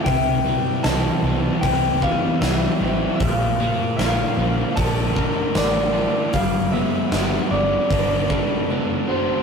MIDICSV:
0, 0, Header, 1, 7, 480
1, 0, Start_track
1, 0, Tempo, 784314
1, 37, Time_signature, 4, 2, 24, 8
1, 5770, End_track
2, 0, Start_track
2, 0, Title_t, "Clean electric guitar"
2, 0, Program_c, 0, 27
2, 27, Note_on_c, 0, 79, 81
2, 509, Note_off_c, 0, 79, 0
2, 511, Note_on_c, 0, 81, 97
2, 984, Note_off_c, 0, 81, 0
2, 986, Note_on_c, 0, 79, 90
2, 1239, Note_off_c, 0, 79, 0
2, 1241, Note_on_c, 0, 77, 87
2, 1471, Note_off_c, 0, 77, 0
2, 1473, Note_on_c, 0, 76, 73
2, 1932, Note_off_c, 0, 76, 0
2, 1935, Note_on_c, 0, 76, 75
2, 2002, Note_off_c, 0, 76, 0
2, 2002, Note_on_c, 0, 77, 75
2, 2421, Note_off_c, 0, 77, 0
2, 2428, Note_on_c, 0, 77, 80
2, 2909, Note_off_c, 0, 77, 0
2, 2911, Note_on_c, 0, 81, 80
2, 3400, Note_off_c, 0, 81, 0
2, 3403, Note_on_c, 0, 74, 72
2, 3856, Note_off_c, 0, 74, 0
2, 3880, Note_on_c, 0, 77, 72
2, 4110, Note_off_c, 0, 77, 0
2, 4112, Note_on_c, 0, 76, 82
2, 4594, Note_off_c, 0, 76, 0
2, 4596, Note_on_c, 0, 74, 70
2, 5531, Note_off_c, 0, 74, 0
2, 5560, Note_on_c, 0, 72, 69
2, 5770, Note_off_c, 0, 72, 0
2, 5770, End_track
3, 0, Start_track
3, 0, Title_t, "Distorted electric guitar"
3, 0, Program_c, 1, 30
3, 37, Note_on_c, 1, 48, 68
3, 270, Note_on_c, 1, 55, 62
3, 515, Note_on_c, 1, 64, 60
3, 747, Note_on_c, 1, 60, 57
3, 995, Note_on_c, 1, 72, 76
3, 1224, Note_off_c, 1, 60, 0
3, 1232, Note_on_c, 1, 60, 58
3, 1239, Note_off_c, 1, 48, 0
3, 1468, Note_off_c, 1, 55, 0
3, 1475, Note_on_c, 1, 55, 67
3, 1704, Note_off_c, 1, 64, 0
3, 1711, Note_on_c, 1, 64, 66
3, 1955, Note_off_c, 1, 60, 0
3, 1955, Note_off_c, 1, 64, 0
3, 1957, Note_off_c, 1, 55, 0
3, 1957, Note_off_c, 1, 72, 0
3, 1965, Note_on_c, 1, 46, 71
3, 2201, Note_on_c, 1, 58, 58
3, 2442, Note_on_c, 1, 65, 67
3, 2682, Note_on_c, 1, 62, 59
3, 2922, Note_on_c, 1, 70, 76
3, 3161, Note_off_c, 1, 46, 0
3, 3167, Note_off_c, 1, 62, 0
3, 3170, Note_on_c, 1, 62, 65
3, 3396, Note_off_c, 1, 58, 0
3, 3403, Note_on_c, 1, 58, 65
3, 3632, Note_off_c, 1, 65, 0
3, 3640, Note_on_c, 1, 65, 69
3, 3879, Note_off_c, 1, 65, 0
3, 3880, Note_off_c, 1, 58, 0
3, 3880, Note_off_c, 1, 70, 0
3, 3883, Note_on_c, 1, 55, 68
3, 4116, Note_on_c, 1, 57, 62
3, 4359, Note_on_c, 1, 67, 57
3, 4595, Note_off_c, 1, 62, 0
3, 4597, Note_on_c, 1, 62, 63
3, 4845, Note_on_c, 1, 71, 76
3, 5078, Note_off_c, 1, 62, 0
3, 5079, Note_off_c, 1, 55, 0
3, 5086, Note_on_c, 1, 62, 64
3, 5315, Note_off_c, 1, 57, 0
3, 5322, Note_on_c, 1, 57, 63
3, 5545, Note_off_c, 1, 67, 0
3, 5553, Note_on_c, 1, 67, 68
3, 5770, Note_off_c, 1, 57, 0
3, 5770, Note_off_c, 1, 62, 0
3, 5770, Note_off_c, 1, 67, 0
3, 5770, Note_off_c, 1, 71, 0
3, 5770, End_track
4, 0, Start_track
4, 0, Title_t, "Twelve-string acoustic guitar"
4, 0, Program_c, 2, 25
4, 40, Note_on_c, 2, 52, 69
4, 273, Note_off_c, 2, 52, 0
4, 281, Note_on_c, 2, 52, 64
4, 521, Note_on_c, 2, 60, 71
4, 752, Note_off_c, 2, 52, 0
4, 759, Note_on_c, 2, 52, 66
4, 997, Note_off_c, 2, 60, 0
4, 1004, Note_on_c, 2, 60, 67
4, 1242, Note_on_c, 2, 67, 70
4, 1477, Note_on_c, 2, 64, 67
4, 1713, Note_off_c, 2, 52, 0
4, 1720, Note_on_c, 2, 52, 64
4, 1958, Note_off_c, 2, 52, 0
4, 1958, Note_off_c, 2, 64, 0
4, 1960, Note_off_c, 2, 67, 0
4, 1961, Note_on_c, 2, 53, 75
4, 1962, Note_off_c, 2, 60, 0
4, 2195, Note_off_c, 2, 53, 0
4, 2202, Note_on_c, 2, 53, 60
4, 2438, Note_on_c, 2, 58, 71
4, 2672, Note_off_c, 2, 53, 0
4, 2680, Note_on_c, 2, 53, 66
4, 2910, Note_off_c, 2, 58, 0
4, 2918, Note_on_c, 2, 58, 71
4, 3156, Note_on_c, 2, 70, 71
4, 3397, Note_on_c, 2, 62, 70
4, 3627, Note_off_c, 2, 53, 0
4, 3634, Note_on_c, 2, 53, 65
4, 3875, Note_off_c, 2, 58, 0
4, 3876, Note_off_c, 2, 53, 0
4, 3877, Note_off_c, 2, 70, 0
4, 3877, Note_on_c, 2, 59, 70
4, 4114, Note_off_c, 2, 59, 0
4, 4121, Note_on_c, 2, 59, 63
4, 4352, Note_off_c, 2, 59, 0
4, 4360, Note_on_c, 2, 59, 67
4, 5079, Note_on_c, 2, 69, 70
4, 5322, Note_off_c, 2, 62, 0
4, 5324, Note_on_c, 2, 62, 65
4, 5557, Note_off_c, 2, 59, 0
4, 5770, Note_off_c, 2, 62, 0
4, 5770, Note_off_c, 2, 69, 0
4, 5770, End_track
5, 0, Start_track
5, 0, Title_t, "Overdriven electric guitar"
5, 0, Program_c, 3, 29
5, 37, Note_on_c, 3, 48, 67
5, 274, Note_on_c, 3, 55, 62
5, 521, Note_on_c, 3, 52, 68
5, 758, Note_off_c, 3, 55, 0
5, 766, Note_on_c, 3, 55, 68
5, 1003, Note_on_c, 3, 60, 68
5, 1236, Note_off_c, 3, 52, 0
5, 1239, Note_off_c, 3, 48, 0
5, 1243, Note_on_c, 3, 52, 69
5, 1476, Note_off_c, 3, 55, 0
5, 1483, Note_on_c, 3, 55, 66
5, 1725, Note_off_c, 3, 60, 0
5, 1733, Note_on_c, 3, 60, 62
5, 1961, Note_off_c, 3, 52, 0
5, 1961, Note_off_c, 3, 55, 0
5, 1964, Note_on_c, 3, 46, 66
5, 1966, Note_off_c, 3, 60, 0
5, 2199, Note_on_c, 3, 58, 62
5, 2442, Note_on_c, 3, 50, 70
5, 2670, Note_off_c, 3, 58, 0
5, 2678, Note_on_c, 3, 58, 66
5, 2918, Note_on_c, 3, 62, 61
5, 3141, Note_off_c, 3, 50, 0
5, 3148, Note_on_c, 3, 50, 73
5, 3161, Note_off_c, 3, 46, 0
5, 3385, Note_off_c, 3, 58, 0
5, 3392, Note_on_c, 3, 58, 64
5, 3627, Note_off_c, 3, 62, 0
5, 3630, Note_on_c, 3, 62, 60
5, 3873, Note_off_c, 3, 50, 0
5, 3875, Note_off_c, 3, 58, 0
5, 3878, Note_on_c, 3, 55, 70
5, 4125, Note_on_c, 3, 59, 65
5, 4354, Note_off_c, 3, 55, 0
5, 4361, Note_on_c, 3, 55, 68
5, 4598, Note_off_c, 3, 59, 0
5, 4606, Note_on_c, 3, 59, 62
5, 4840, Note_off_c, 3, 62, 0
5, 4843, Note_on_c, 3, 62, 62
5, 5074, Note_off_c, 3, 55, 0
5, 5082, Note_on_c, 3, 55, 72
5, 5318, Note_off_c, 3, 59, 0
5, 5325, Note_on_c, 3, 59, 67
5, 5554, Note_off_c, 3, 62, 0
5, 5562, Note_on_c, 3, 62, 64
5, 5770, Note_off_c, 3, 55, 0
5, 5770, Note_off_c, 3, 59, 0
5, 5770, Note_off_c, 3, 62, 0
5, 5770, End_track
6, 0, Start_track
6, 0, Title_t, "Fingered electric bass"
6, 0, Program_c, 4, 33
6, 37, Note_on_c, 4, 36, 76
6, 341, Note_off_c, 4, 36, 0
6, 519, Note_on_c, 4, 36, 81
6, 671, Note_off_c, 4, 36, 0
6, 751, Note_on_c, 4, 36, 80
6, 905, Note_off_c, 4, 36, 0
6, 998, Note_on_c, 4, 36, 81
6, 1303, Note_off_c, 4, 36, 0
6, 1478, Note_on_c, 4, 36, 78
6, 1630, Note_off_c, 4, 36, 0
6, 1717, Note_on_c, 4, 33, 82
6, 1870, Note_off_c, 4, 33, 0
6, 1962, Note_on_c, 4, 34, 80
6, 2266, Note_off_c, 4, 34, 0
6, 2439, Note_on_c, 4, 34, 82
6, 2591, Note_off_c, 4, 34, 0
6, 2676, Note_on_c, 4, 34, 86
6, 2829, Note_off_c, 4, 34, 0
6, 2924, Note_on_c, 4, 34, 77
6, 3226, Note_off_c, 4, 34, 0
6, 3397, Note_on_c, 4, 33, 87
6, 3702, Note_off_c, 4, 33, 0
6, 3883, Note_on_c, 4, 31, 78
6, 4185, Note_off_c, 4, 31, 0
6, 4355, Note_on_c, 4, 31, 84
6, 4508, Note_off_c, 4, 31, 0
6, 4595, Note_on_c, 4, 31, 87
6, 4748, Note_off_c, 4, 31, 0
6, 4838, Note_on_c, 4, 31, 85
6, 5142, Note_off_c, 4, 31, 0
6, 5770, End_track
7, 0, Start_track
7, 0, Title_t, "Drums"
7, 35, Note_on_c, 9, 46, 53
7, 37, Note_on_c, 9, 36, 106
7, 97, Note_off_c, 9, 46, 0
7, 99, Note_off_c, 9, 36, 0
7, 514, Note_on_c, 9, 46, 45
7, 515, Note_on_c, 9, 38, 101
7, 575, Note_off_c, 9, 46, 0
7, 577, Note_off_c, 9, 38, 0
7, 996, Note_on_c, 9, 46, 54
7, 999, Note_on_c, 9, 36, 105
7, 1057, Note_off_c, 9, 46, 0
7, 1060, Note_off_c, 9, 36, 0
7, 1237, Note_on_c, 9, 36, 80
7, 1299, Note_off_c, 9, 36, 0
7, 1479, Note_on_c, 9, 46, 45
7, 1480, Note_on_c, 9, 38, 102
7, 1540, Note_off_c, 9, 46, 0
7, 1541, Note_off_c, 9, 38, 0
7, 1958, Note_on_c, 9, 46, 55
7, 1961, Note_on_c, 9, 36, 109
7, 2019, Note_off_c, 9, 46, 0
7, 2022, Note_off_c, 9, 36, 0
7, 2442, Note_on_c, 9, 46, 46
7, 2444, Note_on_c, 9, 38, 91
7, 2504, Note_off_c, 9, 46, 0
7, 2505, Note_off_c, 9, 38, 0
7, 2917, Note_on_c, 9, 46, 59
7, 2921, Note_on_c, 9, 36, 107
7, 2979, Note_off_c, 9, 46, 0
7, 2982, Note_off_c, 9, 36, 0
7, 3161, Note_on_c, 9, 36, 78
7, 3222, Note_off_c, 9, 36, 0
7, 3397, Note_on_c, 9, 46, 54
7, 3398, Note_on_c, 9, 38, 106
7, 3458, Note_off_c, 9, 46, 0
7, 3459, Note_off_c, 9, 38, 0
7, 3874, Note_on_c, 9, 46, 56
7, 3878, Note_on_c, 9, 36, 103
7, 3935, Note_off_c, 9, 46, 0
7, 3940, Note_off_c, 9, 36, 0
7, 4357, Note_on_c, 9, 46, 45
7, 4358, Note_on_c, 9, 38, 93
7, 4418, Note_off_c, 9, 46, 0
7, 4419, Note_off_c, 9, 38, 0
7, 4838, Note_on_c, 9, 36, 104
7, 4839, Note_on_c, 9, 46, 54
7, 4899, Note_off_c, 9, 36, 0
7, 4900, Note_off_c, 9, 46, 0
7, 5080, Note_on_c, 9, 36, 87
7, 5141, Note_off_c, 9, 36, 0
7, 5770, End_track
0, 0, End_of_file